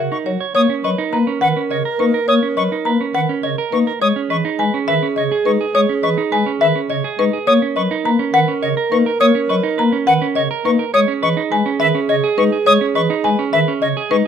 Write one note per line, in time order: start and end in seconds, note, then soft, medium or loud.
0.00 0.16 F#4 medium
0.00 0.37 A#4 medium
0.00 0.16 E5 medium
0.12 0.31 D#4 medium
0.12 0.18 C#6 medium
0.26 0.37 F#3 medium
0.26 0.45 F#4 medium
0.26 0.45 C#5 medium
0.41 0.54 C#5 medium
0.55 0.66 A#3 medium
0.55 3.76 A#4 medium
0.55 0.74 C#5 medium
0.55 0.74 C#5 loud
0.55 0.61 D#6 loud
0.70 0.89 C#4 medium
0.84 0.95 F#3 medium
0.84 1.03 B4 medium
0.84 1.03 D#5 medium
0.84 0.90 C#6 medium
0.98 1.17 D#4 loud
1.13 1.24 A#3 medium
1.13 1.32 B4 medium
1.13 1.32 A#5 medium
1.27 1.46 C#4 medium
1.41 1.53 D#3 loud
1.41 1.61 B4 loud
1.41 1.60 F#5 loud
1.41 1.48 F#5 loud
1.57 1.75 C#4 medium
1.71 1.82 C#3 medium
1.71 1.85 C#5 medium
1.71 1.77 D#5 medium
1.71 1.89 D#5 medium
1.85 2.04 A#4 medium
1.99 2.11 A#3 medium
1.99 2.18 D#4 medium
1.99 2.18 B4 medium
1.99 2.05 C#6 medium
2.14 2.28 A#4 medium
2.28 2.39 A#3 medium
2.28 2.47 C#5 medium
2.28 2.47 C#5 loud
2.28 2.34 D#6 loud
2.43 2.62 C#4 medium
2.57 2.68 F#3 medium
2.57 2.76 B4 medium
2.57 2.76 D#5 medium
2.57 2.63 C#6 medium
2.72 2.91 D#4 medium
2.85 2.97 A#3 medium
2.85 3.05 B4 medium
2.85 3.05 A#5 medium
3.01 3.19 C#4 medium
3.15 3.26 D#3 medium
3.15 3.34 B4 medium
3.15 3.34 F#5 loud
3.15 3.21 F#5 medium
3.29 3.48 C#4 medium
3.43 3.55 C#3 medium
3.43 3.58 C#5 medium
3.43 3.62 D#5 medium
3.43 3.50 D#5 medium
3.58 3.77 A#4 loud
3.72 3.83 A#3 medium
3.72 3.92 D#4 medium
3.72 3.91 B4 medium
3.72 3.79 C#6 medium
3.87 4.01 A#4 medium
4.01 4.12 G#3 loud
4.01 7.29 G#4 medium
4.01 4.20 C#5 loud
4.01 4.20 C#5 medium
4.01 4.08 D#6 loud
4.16 4.35 C#4 medium
4.30 4.41 E3 medium
4.30 4.49 B4 medium
4.30 4.49 D#5 medium
4.30 4.37 C#6 medium
4.45 4.64 D#4 loud
4.59 4.70 G#3 medium
4.59 4.78 B4 medium
4.59 4.78 G#5 medium
4.74 4.93 C#4 medium
4.88 4.99 D#3 loud
4.88 5.07 B4 medium
4.88 5.07 E5 loud
4.88 4.94 E5 medium
5.03 5.21 C#4 medium
5.16 5.28 C#3 medium
5.16 5.36 C#5 medium
5.16 5.35 D#5 medium
5.16 5.23 D#5 medium
5.32 5.50 G#4 loud
5.45 5.57 G#3 medium
5.45 5.65 D#4 medium
5.45 5.64 B4 medium
5.45 5.52 C#6 medium
5.61 5.79 G#4 medium
5.75 5.86 G#3 loud
5.75 5.93 C#5 medium
5.75 5.93 C#5 loud
5.75 5.81 D#6 loud
5.89 6.08 C#4 medium
6.03 6.14 E3 medium
6.03 6.22 B4 medium
6.03 6.22 D#5 medium
6.03 6.09 C#6 medium
6.18 6.37 D#4 loud
6.32 6.44 G#3 medium
6.32 6.51 B4 medium
6.32 6.51 G#5 medium
6.46 6.65 C#4 medium
6.61 6.72 D#3 loud
6.61 6.80 B4 loud
6.61 6.67 E5 loud
6.61 6.80 E5 loud
6.75 6.94 C#4 medium
6.90 7.01 C#3 medium
6.90 7.09 C#5 medium
6.90 7.09 D#5 medium
6.90 6.96 D#5 medium
7.04 7.23 G#4 loud
7.19 7.30 G#3 medium
7.19 7.38 D#4 medium
7.19 7.38 B4 medium
7.19 7.25 C#6 medium
7.33 7.52 G#4 medium
7.47 7.59 A#3 loud
7.47 10.75 A#4 medium
7.47 7.66 C#5 loud
7.47 7.53 D#6 loud
7.62 7.81 C#4 medium
7.76 7.88 F#3 medium
7.76 7.95 B4 medium
7.76 7.95 D#5 medium
7.76 7.82 C#6 medium
7.91 8.10 D#4 loud
8.05 8.16 A#3 medium
8.05 8.24 B4 medium
8.05 8.24 A#5 medium
8.19 8.38 C#4 medium
8.34 8.45 D#3 loud
8.34 8.53 B4 loud
8.34 8.40 F#5 loud
8.34 8.53 F#5 loud
8.48 8.67 C#4 medium
8.62 8.74 C#3 medium
8.62 8.77 C#5 medium
8.62 8.68 D#5 medium
8.62 8.82 D#5 medium
8.77 8.96 A#4 loud
8.92 9.03 A#3 medium
8.92 9.11 D#4 medium
8.92 9.11 B4 medium
8.92 8.98 C#6 medium
9.06 9.20 A#4 medium
9.20 9.31 A#3 loud
9.20 9.39 C#5 loud
9.20 9.40 C#5 loud
9.20 9.26 D#6 loud
9.35 9.54 C#4 medium
9.49 9.60 F#3 medium
9.49 9.68 B4 medium
9.49 9.69 D#5 medium
9.49 9.55 C#6 medium
9.63 9.83 D#4 loud
9.78 9.89 A#3 medium
9.78 9.97 B4 medium
9.78 9.97 A#5 medium
9.92 10.11 C#4 loud
10.07 10.18 D#3 loud
10.07 10.26 B4 loud
10.07 10.26 F#5 loud
10.07 10.13 F#5 loud
10.22 10.40 C#4 medium
10.35 10.47 C#3 medium
10.35 10.50 C#5 medium
10.35 10.55 D#5 medium
10.35 10.42 D#5 medium
10.51 10.69 A#4 loud
10.65 10.76 A#3 medium
10.65 10.84 D#4 medium
10.65 10.84 B4 medium
10.65 10.71 C#6 medium
10.79 10.93 A#4 medium
10.94 11.05 G#3 loud
10.94 14.16 G#4 medium
10.94 11.13 C#5 loud
10.94 11.00 D#6 loud
11.08 11.27 C#4 medium
11.22 11.34 E3 medium
11.22 11.41 B4 medium
11.22 11.42 D#5 medium
11.22 11.29 C#6 loud
11.37 11.56 D#4 loud
11.51 11.63 G#3 medium
11.51 11.70 B4 medium
11.51 11.70 G#5 loud
11.66 11.85 C#4 loud
11.80 11.92 D#3 loud
11.80 11.99 B4 loud
11.80 11.99 E5 loud
11.80 11.86 E5 loud
11.95 12.14 C#4 medium
12.09 12.21 C#3 loud
12.09 12.28 C#5 medium
12.09 12.28 D#5 medium
12.09 12.15 D#5 medium
12.24 12.42 G#4 loud
12.38 12.49 G#3 medium
12.38 12.57 D#4 medium
12.38 12.57 B4 medium
12.38 12.44 C#6 medium
12.52 12.71 G#4 medium
12.66 12.78 G#3 loud
12.66 12.85 C#5 loud
12.66 12.86 C#5 loud
12.66 12.73 D#6 loud
12.81 13.00 C#4 medium
12.95 13.07 E3 medium
12.95 13.14 B4 medium
12.95 13.14 D#5 medium
12.95 13.02 C#6 loud
13.10 13.29 D#4 loud
13.24 13.36 G#3 medium
13.24 13.43 B4 medium
13.24 13.43 G#5 medium
13.39 13.58 C#4 loud
13.53 13.64 D#3 loud
13.53 13.72 B4 loud
13.53 13.72 E5 loud
13.53 13.59 E5 loud
13.68 13.87 C#4 loud
13.82 13.93 C#3 loud
13.82 14.01 C#5 medium
13.82 13.88 D#5 medium
13.82 14.01 D#5 medium
13.97 14.16 G#4 loud
14.11 14.22 G#3 medium
14.11 14.27 D#4 medium
14.11 14.27 B4 medium
14.11 14.17 C#6 medium